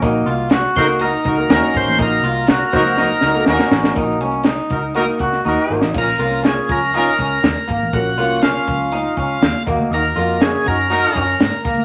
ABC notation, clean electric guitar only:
X:1
M:4/4
L:1/8
Q:1/4=121
K:Ebdor
V:1 name="Clean electric guitar"
E F G2 E2 D2 | E F G2 E2 D2 | E D E2 E G E2 | z F D2 E D z B, |
z F D2 E D z B, | z F D2 E D z B, |]